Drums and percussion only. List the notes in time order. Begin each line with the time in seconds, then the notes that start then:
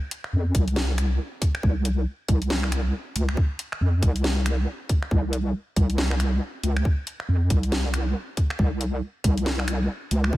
0.11 closed hi-hat
0.24 finger snap
0.55 kick, closed hi-hat
0.68 closed hi-hat
0.76 snare
0.98 finger snap, closed hi-hat
1.42 kick, closed hi-hat
1.55 finger snap
1.63 kick
1.85 closed hi-hat
2.29 kick, closed hi-hat
2.42 closed hi-hat
2.50 snare
2.63 finger snap
2.72 finger snap, closed hi-hat
3.16 closed hi-hat
3.29 finger snap
3.37 kick
3.59 closed hi-hat
3.72 finger snap
4.02 kick, closed hi-hat
4.16 closed hi-hat
4.24 snare
4.46 finger snap, closed hi-hat
4.89 kick, closed hi-hat
5.03 finger snap
5.11 kick
5.33 closed hi-hat
5.76 kick, closed hi-hat
5.90 closed hi-hat
5.98 snare
6.11 finger snap
6.20 finger snap, closed hi-hat
6.63 closed hi-hat
6.77 finger snap
6.85 kick
7.07 closed hi-hat
7.20 finger snap
7.50 kick, closed hi-hat
7.63 closed hi-hat
7.72 snare
7.94 finger snap, closed hi-hat
8.37 kick, closed hi-hat
8.50 finger snap
8.59 kick
8.81 closed hi-hat
9.24 kick, closed hi-hat
9.37 closed hi-hat
9.46 snare
9.59 finger snap
9.68 finger snap, closed hi-hat
10.11 closed hi-hat
10.24 finger snap
10.33 kick